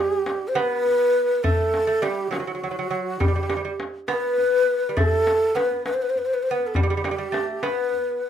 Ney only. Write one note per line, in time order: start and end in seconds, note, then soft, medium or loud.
0.00 0.49 G4 medium
0.48 0.55 C5 medium
0.55 1.45 B4 medium
0.55 0.60 C5 medium
1.43 2.04 A4 medium
2.03 2.32 G4 medium
2.32 3.22 F#4 medium
3.20 3.82 G4 medium
4.09 4.98 B4 medium
4.97 5.57 A4 loud
5.56 5.85 B4 medium
5.85 5.95 B4 medium
5.94 6.03 C5 medium
6.02 6.11 B4 medium
6.10 6.19 C5 medium
6.18 6.27 B4 medium
6.26 6.35 C5 medium
6.34 6.44 B4 medium
6.42 6.52 C5 medium
6.51 6.68 B4 medium
6.67 6.76 A4 medium
6.75 7.65 G4 medium
7.64 8.24 B4 medium